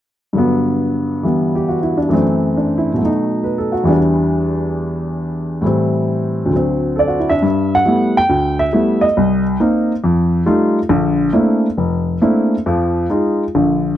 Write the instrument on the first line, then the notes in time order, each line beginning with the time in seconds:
upright piano
0.33 G2 D3 F#3
0.38 B3
1.23 E3 G3 B3
1.55 G4
1.68 F#4
1.83 E4
1.97 D4
2.09 F#2 E3 A3
2.13 C4
2.57 D4
2.78 E4
2.94 B2
2.98 F#3 A3
3.05 D#4
3.44 B4
3.58 A4
3.72 F#4
3.84 E2 E3 G3
3.89 D4
5.61 A2 E3 G3
5.66 C4
6.46 D2 D3
6.53 F#3 C4
6.96 A4 D5
7.08 F#4
7.19 E4
7.29 D4 E5
7.42 G2
7.75 F#5
7.86 G3 A3 B3 E4
8.17 G5
8.29 D2
8.59 E5
8.73 G3 A3 B3 E4
9.01 D#5
9.17 C2
9.60 A#3 C4 D#4
10.04 F2
10.46 G3 A3 D#4 F4
10.89 A#1 D3
11.33 A3 A#3 C4 D4 E4
11.77 F1
12.22 A3 A#3 C4 D4 E4
12.66 F2 F3
13.10 G#3 D#4 F4
13.55 A#1 D3